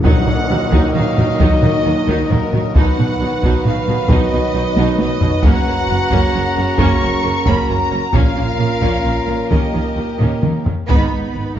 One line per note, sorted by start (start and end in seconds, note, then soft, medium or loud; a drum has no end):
0.03 0.11 D#2 medium
0.03 0.12 D#3 medium
0.03 2.71 D#3 medium
0.03 0.68 D#3 medium
0.03 0.25 F#3 medium
0.03 2.72 F#3 medium
0.03 2.73 A#3 medium
0.03 0.25 D#4 medium
0.03 2.73 D#4 medium
0.03 2.71 F#4 medium
0.03 2.71 A#4 medium
0.03 2.72 D#5 medium
0.03 0.91 F#5 medium
0.03 taiko medium
0.03 tam-tam medium
0.26 0.34 D#2 soft
0.26 0.34 D#3 soft
0.26 0.36 F#3 soft
0.26 0.36 D#4 soft
0.26 taiko low-mid soft
0.49 0.58 D#2 medium
0.49 0.57 D#3 soft
0.49 0.58 F#3 soft
0.49 0.58 D#4 soft
0.71 0.80 D#2 medium
0.71 0.79 D#3 medium
0.71 0.93 F#3 medium
0.71 0.93 D#4 medium
0.71 taiko medium
0.94 1.03 D#2 medium
0.94 1.02 D#3 soft
0.94 1.03 F#3 soft
0.94 1.03 D#4 medium
0.94 1.39 F5 medium
0.94 taiko low-mid soft
1.17 1.26 D#2 soft
1.17 1.25 D#3 soft
1.17 1.26 F#3 medium
1.17 1.26 D#4 medium
1.17 taiko low-mid medium
1.40 1.48 D#2 medium
1.40 1.48 D#3 medium
1.40 1.61 F#3 medium
1.40 1.61 D#4 medium
1.40 2.30 D#5 medium
1.40 taiko medium
1.62 1.71 D#2 soft
1.62 1.70 D#3 soft
1.62 1.70 F#3 soft
1.62 1.70 D#4 soft
1.62 taiko low-mid soft
1.85 1.93 D#2 soft
1.85 1.93 D#3 soft
1.85 1.94 F#3 soft
1.85 1.93 D#4 soft
2.07 2.16 D#2 medium
2.07 2.15 D#3 medium
2.07 2.29 F#3 medium
2.07 2.29 D#4 medium
2.07 taiko medium
2.30 2.39 D#2 soft
2.30 2.38 D#3 soft
2.30 2.38 F#3 soft
2.30 2.38 D#4 soft
2.30 2.76 A#4 medium
2.30 taiko low-mid soft
2.53 2.62 D#2 soft
2.53 2.61 D#3 soft
2.53 2.61 F#3 soft
2.53 2.61 D#4 soft
2.53 taiko low-mid soft
2.75 2.84 B1 medium
2.75 2.83 B2 medium
2.75 5.41 D#3 medium
2.75 2.97 F#3 medium
2.75 5.40 F#3 medium
2.75 5.45 B3 medium
2.75 2.97 D#4 medium
2.75 5.40 D#4 medium
2.75 5.40 F#4 soft
2.75 6.30 B4 medium
2.75 5.40 B4 medium
2.75 3.63 F#5 medium
2.75 taiko medium
2.99 3.07 B1 soft
2.99 3.07 B2 soft
2.99 3.07 F#3 soft
2.99 3.07 D#4 soft
2.99 taiko low-mid soft
3.21 3.29 B1 soft
3.21 3.29 B2 soft
3.21 3.29 F#3 soft
3.21 3.29 D#4 soft
3.43 3.51 B1 medium
3.43 3.51 B2 medium
3.43 3.64 F#3 medium
3.43 3.64 D#4 medium
3.43 taiko medium
3.65 3.74 B1 soft
3.65 3.74 B2 soft
3.65 3.74 F#3 soft
3.65 3.74 D#4 soft
3.65 4.10 F5 medium
3.65 taiko low-mid soft
3.88 3.96 B1 soft
3.88 3.96 B2 soft
3.88 3.96 F#3 soft
3.88 3.96 D#4 soft
3.88 taiko low-mid soft
4.10 4.18 B1 medium
4.10 4.18 B2 medium
4.10 4.31 F#3 medium
4.10 4.31 D#4 medium
4.10 4.99 D#5 medium
4.10 taiko loud
4.32 4.40 B1 soft
4.32 4.40 B2 soft
4.32 4.41 F#3 soft
4.32 4.41 D#4 soft
4.54 4.62 B1 medium
4.54 4.63 B2 soft
4.54 4.63 F#3 soft
4.54 4.63 D#4 medium
4.76 4.84 B1 medium
4.76 4.85 B2 medium
4.76 4.98 F#3 medium
4.76 4.98 D#4 medium
4.76 taiko high medium
4.99 5.08 B1 medium
4.99 5.08 B2 medium
4.99 5.07 F#3 soft
4.99 5.07 D#4 soft
4.99 5.43 D#5 medium
4.99 taiko high medium
5.21 5.30 B1 soft
5.21 5.30 B2 soft
5.21 5.29 F#3 medium
5.21 5.29 D#4 medium
5.21 taiko low medium
5.43 5.51 F#1 medium
5.43 5.52 F#2 medium
5.43 7.97 C#3 medium
5.43 7.97 F#3 medium
5.43 5.65 A#3 medium
5.43 8.10 C#4 medium
5.43 5.65 C#4 medium
5.43 8.10 F#4 medium
5.43 8.11 F#4 medium
5.43 6.80 F#5 loud
5.43 7.98 A#5 medium
5.43 taiko medium
5.66 5.75 F#1 medium
5.66 5.74 F#2 soft
5.66 5.75 A#3 soft
5.66 5.75 C#4 soft
5.89 5.97 F#1 medium
5.89 5.97 F#2 medium
5.89 5.97 A#3 medium
5.89 5.97 C#4 medium
6.10 6.20 F#1 medium
6.10 6.20 F#2 medium
6.10 6.32 A#3 medium
6.10 6.32 C#4 medium
6.10 taiko medium
6.33 6.42 F#1 medium
6.33 6.42 F#2 medium
6.33 6.41 A#3 medium
6.33 6.41 C#4 medium
6.33 8.13 A#4 medium
6.56 6.65 F#1 medium
6.56 6.64 F#2 medium
6.56 6.65 A#3 medium
6.56 6.65 C#4 soft
6.78 6.89 F#1 medium
6.78 6.87 F#2 medium
6.78 7.00 A#3 medium
6.78 7.00 C#4 medium
6.78 7.45 C#6 loud
6.78 taiko medium
7.02 7.11 F#1 medium
7.02 7.10 F#2 medium
7.02 7.10 A#3 medium
7.02 7.10 C#4 soft
7.24 7.32 F#1 medium
7.24 7.32 F#2 medium
7.24 7.32 A#3 medium
7.24 7.32 C#4 medium
7.46 7.55 F#1 medium
7.46 7.54 F#2 medium
7.46 7.67 A#3 medium
7.46 7.68 C#4 medium
7.46 7.69 B5 medium
7.46 taiko medium
7.69 7.78 F#1 medium
7.69 7.77 F#2 medium
7.69 7.77 A#3 soft
7.69 7.77 C#4 medium
7.69 8.14 A#5 medium
7.91 8.00 F#1 soft
7.91 8.00 F#2 soft
7.91 7.99 A#3 soft
7.91 7.99 C#4 medium
8.14 8.22 A#1 medium
8.14 8.22 A#2 medium
8.14 10.63 A#2 medium
8.14 8.79 A#2 medium
8.14 8.35 A#3 medium
8.14 10.63 A#3 medium
8.14 8.35 C#4 medium
8.14 10.64 C#4 medium
8.14 9.49 F4 medium
8.14 9.52 F4 medium
8.14 10.65 A#4 medium
8.14 10.63 A#4 medium
8.14 9.52 F5 medium
8.14 taiko medium
8.36 8.45 A#1 soft
8.36 8.44 A#2 medium
8.36 8.44 A#3 soft
8.36 8.45 C#4 soft
8.59 8.68 A#1 soft
8.59 8.67 A#2 soft
8.59 8.67 A#3 soft
8.59 8.67 C#4 soft
8.81 8.90 A#1 medium
8.81 8.89 A#2 medium
8.81 9.03 A#3 medium
8.81 9.03 C#4 medium
8.81 taiko medium
9.04 9.14 A#1 soft
9.04 9.12 A#2 soft
9.04 9.12 A#3 soft
9.04 9.12 C#4 soft
9.27 9.36 A#1 soft
9.27 9.35 A#2 soft
9.27 9.35 A#3 soft
9.27 9.35 C#4 soft
9.50 9.60 D#2 medium
9.50 9.59 D#3 medium
9.50 9.72 A#3 medium
9.50 9.72 C#4 soft
9.50 10.67 G4 soft
9.50 10.70 G4 soft
9.50 10.42 D#5 medium
9.50 taiko medium
9.73 9.82 D#2 soft
9.73 9.81 D#3 soft
9.73 9.82 A#3 soft
9.73 9.82 C#4 soft
9.96 10.05 D#2 soft
9.96 10.04 D#3 soft
9.96 10.06 A#3 soft
9.96 10.06 C#4 soft
10.19 10.29 D#2 soft
10.19 10.27 D#3 soft
10.19 10.42 A#3 soft
10.19 10.42 C#4 soft
10.19 taiko low-mid medium
10.42 10.52 D#2 soft
10.42 10.50 D#3 soft
10.42 10.52 A#3 soft
10.42 10.52 C#4 soft
10.42 taiko mid medium
10.65 10.75 D#2 soft
10.65 10.73 D#3 soft
10.65 10.75 A#3 soft
10.65 10.75 C#4 soft
10.65 taiko low medium
10.88 11.11 G#1 medium
10.88 11.11 D#3 medium
10.88 11.59 G#3 medium
10.88 11.52 B3 medium
10.88 11.59 D#4 medium
10.88 11.53 B4 medium
10.88 11.53 B5 medium
10.88 taiko medium
11.12 11.21 G#1 soft
11.12 11.20 G#3 soft
11.35 11.43 G#1 soft
11.35 11.43 B3 soft
11.56 11.59 D#3 soft
11.56 11.59 A#3 medium